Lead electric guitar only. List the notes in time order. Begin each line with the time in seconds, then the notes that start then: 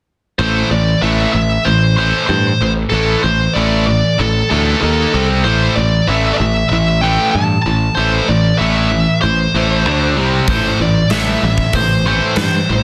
0.39 C5
0.71 D5
1.02 E5
1.33 E5
1.65 C5
1.97 C5
2.27 C5
2.90 A4
3.23 C5
3.54 D5
3.87 D5
4.19 A4
4.50 A4
4.81 A4
5.44 C5
5.75 D5
6.08 E5
6.33 D5
6.37 E5
6.69 E5
7.01 G5
7.31 A5
7.62 A5
7.95 C5
8.28 D5
8.58 E5
9.21 C5
10.49 C5
10.81 D5
11.11 E5
11.44 E5
11.75 C5
12.07 C5
12.37 C5